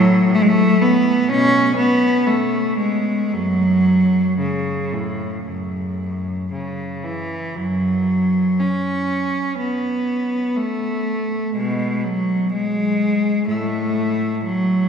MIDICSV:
0, 0, Header, 1, 2, 480
1, 0, Start_track
1, 0, Key_signature, 3, "minor"
1, 0, Tempo, 936037
1, 662, Tempo, 981997
1, 1142, Tempo, 1056338
1, 1618, Time_signature, 4, 2, 24, 8
1, 4022, Tempo, 981997
1, 5462, Tempo, 958466
1, 7129, End_track
2, 0, Start_track
2, 0, Title_t, "Cello"
2, 0, Program_c, 0, 42
2, 0, Note_on_c, 0, 45, 93
2, 0, Note_on_c, 0, 54, 102
2, 159, Note_off_c, 0, 45, 0
2, 177, Note_on_c, 0, 57, 98
2, 179, Note_off_c, 0, 54, 0
2, 212, Note_off_c, 0, 57, 0
2, 214, Note_on_c, 0, 56, 84
2, 247, Note_on_c, 0, 57, 102
2, 248, Note_off_c, 0, 56, 0
2, 418, Note_on_c, 0, 59, 88
2, 419, Note_off_c, 0, 57, 0
2, 658, Note_on_c, 0, 47, 70
2, 661, Note_off_c, 0, 59, 0
2, 662, Note_on_c, 0, 61, 100
2, 880, Note_off_c, 0, 47, 0
2, 894, Note_on_c, 0, 59, 96
2, 898, Note_off_c, 0, 61, 0
2, 1135, Note_off_c, 0, 59, 0
2, 1136, Note_on_c, 0, 57, 79
2, 1370, Note_on_c, 0, 56, 72
2, 1373, Note_off_c, 0, 57, 0
2, 1610, Note_off_c, 0, 56, 0
2, 1620, Note_on_c, 0, 42, 59
2, 1621, Note_on_c, 0, 54, 77
2, 2086, Note_off_c, 0, 42, 0
2, 2104, Note_on_c, 0, 49, 64
2, 2105, Note_off_c, 0, 54, 0
2, 2342, Note_off_c, 0, 49, 0
2, 2349, Note_on_c, 0, 45, 61
2, 2590, Note_on_c, 0, 42, 51
2, 2591, Note_off_c, 0, 45, 0
2, 3058, Note_off_c, 0, 42, 0
2, 3072, Note_on_c, 0, 49, 51
2, 3293, Note_off_c, 0, 49, 0
2, 3307, Note_on_c, 0, 52, 59
2, 3541, Note_on_c, 0, 42, 48
2, 3541, Note_on_c, 0, 54, 61
2, 3544, Note_off_c, 0, 52, 0
2, 3999, Note_off_c, 0, 42, 0
2, 4015, Note_on_c, 0, 61, 69
2, 4018, Note_off_c, 0, 54, 0
2, 4496, Note_on_c, 0, 59, 69
2, 4498, Note_off_c, 0, 61, 0
2, 4968, Note_off_c, 0, 59, 0
2, 4974, Note_on_c, 0, 57, 68
2, 5456, Note_off_c, 0, 57, 0
2, 5459, Note_on_c, 0, 56, 63
2, 5461, Note_on_c, 0, 47, 57
2, 5685, Note_off_c, 0, 47, 0
2, 5696, Note_off_c, 0, 56, 0
2, 5704, Note_on_c, 0, 54, 71
2, 5942, Note_off_c, 0, 54, 0
2, 5944, Note_on_c, 0, 56, 83
2, 6415, Note_off_c, 0, 56, 0
2, 6421, Note_on_c, 0, 45, 62
2, 6424, Note_on_c, 0, 57, 69
2, 6879, Note_off_c, 0, 45, 0
2, 6891, Note_off_c, 0, 57, 0
2, 6907, Note_on_c, 0, 54, 76
2, 7129, Note_off_c, 0, 54, 0
2, 7129, End_track
0, 0, End_of_file